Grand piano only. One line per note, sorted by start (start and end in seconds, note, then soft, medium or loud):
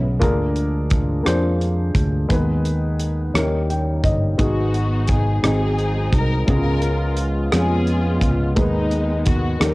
0.00 0.24 C#3 soft
0.00 0.24 B3 medium
0.00 0.23 C#4 medium
0.00 0.23 E4 medium
0.00 0.21 G#4 medium
0.00 0.22 A#4 medium
0.00 0.23 B4 medium
0.19 1.21 D3 medium
0.19 0.96 A#3 medium
0.19 0.96 D4 medium
0.19 0.96 F4 medium
0.19 0.97 G#4 medium
0.19 0.97 A#4 medium
1.23 2.00 A#3 medium
1.23 2.00 D4 medium
1.23 2.00 F4 medium
1.23 2.01 G#4 medium
1.23 2.01 C5 medium
2.29 3.30 D#3 medium
2.29 3.05 G#3 medium
2.29 3.05 B3 medium
2.29 3.05 D#4 medium
2.29 3.06 G#4 medium
2.29 3.06 B4 medium
3.34 4.35 D#3 soft
3.34 4.10 A#3 medium
3.34 4.10 C#4 medium
3.34 4.10 D#4 medium
3.34 3.42 E4 soft
3.34 4.11 A#4 medium
3.43 4.14 G4 medium
3.70 4.02 G5 medium
4.04 4.37 D#5 soft
4.38 5.39 G#2 soft
4.38 5.14 G#3 medium
4.38 5.13 B3 soft
4.38 5.14 D#4 medium
4.38 5.15 F#4 medium
4.38 5.15 G#4 medium
5.43 6.44 G#2 soft
5.43 6.18 G#3 soft
5.43 6.19 C4 soft
5.43 6.19 D#4 soft
5.43 6.19 F#4 soft
5.43 6.20 G#4 medium
6.47 7.48 C#3 soft
6.47 7.23 G#3 medium
6.47 7.23 B3 medium
6.47 7.23 C#4 medium
6.47 6.55 E4 soft
6.47 7.24 G#4 medium
6.55 7.27 F4 medium
7.52 8.27 G#3 medium
7.52 8.28 B3 soft
7.52 8.28 C#4 soft
7.52 8.28 F4 soft
7.52 8.29 G#4 medium
8.56 9.58 D#3 soft
8.56 9.32 G#3 medium
8.56 9.32 B3 medium
8.56 9.32 D#4 medium
8.56 9.33 G#4 medium
8.56 9.33 B4 medium
9.59 9.74 D#3 soft
9.59 9.74 A#3 soft
9.59 9.74 C#4 soft
9.59 9.74 D#4 soft
9.59 9.74 G4 soft
9.59 9.68 A4 soft
9.69 9.74 A#4 medium